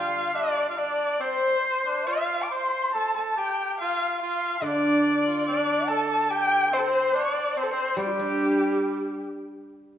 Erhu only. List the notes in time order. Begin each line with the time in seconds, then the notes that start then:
Already playing: F5
0.36 D5
0.71 F5
0.78 D5
1.21 C5
2.07 F5
2.43 D6
2.52 C6
2.94 A5
3.17 A5
3.38 G5
3.81 F5
4.22 F5
4.63 D5
5.46 D5
5.88 A5
6.31 G5
6.73 C5
6.78 A4
6.88 C5
7.15 D5
7.57 C5
7.63 A4
7.71 C5
8.00 G4